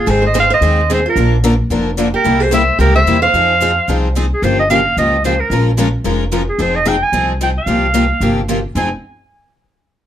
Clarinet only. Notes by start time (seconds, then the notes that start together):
0.00 G#4
0.10 C5
0.26 D#5
0.40 F5
0.54 D#5
0.94 C5
1.09 A#4
2.15 A#4
2.42 C5
2.53 E5
2.81 A#4
2.95 E5
3.22 F5
4.33 G#4
4.44 C5
4.60 D#5
4.70 F5
4.98 D#5
5.25 C5
5.40 A#4
6.49 G#4
6.61 C5
6.75 D#5
6.88 G5
7.03 G#5
7.43 G5
7.58 F5
8.77 G#5